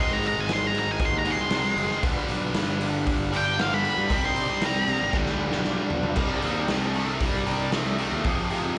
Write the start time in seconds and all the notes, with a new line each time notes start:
Already playing: G#2 D#3 C4 F#4 A#4
0.00 G#3 C6
0.11 G#2 A#5
0.23 C4 F#4 A#4, open hi-hat
0.28 A#5
0.37 G#1 G#5
0.47 C4 F#4 A#4, snare, open hi-hat
0.53 C6
0.67 A#5
0.73 G#2 C4 F#4 A#4, open hi-hat
0.79 A#5
0.87 G#1
0.92 G#5
0.99 C4 F#4 A#4, kick, open hi-hat
1.05 C6
1.12 D#2
1.19 A#5
1.24 G#2 D#3 G#3 C4 F#4 G#4, open hi-hat
1.31 C6
1.38 C2
1.50 G#2 D#3 G#3 C4 F#4 A#4, snare, open hi-hat
1.64 snare
1.76 F#1 C4 F#4 A#4, open hi-hat
1.91 snare
2.02 G1 G2 D3 G3 D4 F4, kick, open hi-hat
2.06 B4
2.28 B1 D4 F4 B4, open hi-hat
2.54 G1 D4 F4, snare, open hi-hat
2.59 B4
2.81 D4 F4 B4, open hi-hat
3.07 D4 F4 B4, kick, open hi-hat
3.19 G1
3.32 G2 D3 G3 D4 F4 B4, open hi-hat
3.37 G5
3.57 G2 D3 G3 D4 F4 B4, snare, open hi-hat
3.61 F5
3.74 B5
3.83 D4 F4 B4, open hi-hat
3.97 G2
4.09 C2 C3 G3 C4 D4 D#4 A#4, kick, open hi-hat
4.24 C3 C6
4.36 D4 D#4 G4, open hi-hat
4.50 C2
4.60 D4 D#4 A#4, snare, open hi-hat
4.66 A#5
4.88 C3 D4 D#4 A#4, open hi-hat
5.01 G#1
5.13 G1 G2 D3 G3 D4 F4 B4, kick, snare
5.26 D2, snare
5.40 D4 F4 B4
5.52 B1, snare
5.64 D4 F4 D5, snare
5.90 B1 D4 F4 B4, floor tom
6.03 floor tom
6.16 C2 C3 G3 D4 D#4 A#4, kick, crash
6.42 D#2 C3 G3 D4 D#4 A#4, open hi-hat
6.68 C2 C3 A3 D4 D#4 A#4, snare, open hi-hat
6.94 C3 A3 D4 D#4 A#4, open hi-hat
7.20 C3 G3 D4 D#4 A#4, kick, open hi-hat
7.35 C2
7.46 C3 G3 D4 D#4 A#4, open hi-hat
7.72 C3 A3 D4 D#4 A#4, snare, open hi-hat
7.98 C3 A3 D4 D#4 A#4, open hi-hat
8.12 D#2
8.24 F2 C3 D#4 G4 G#4, kick, open hi-hat
8.38 F3
8.50 F2 C3 D#4 G4 G#4, open hi-hat
8.64 F2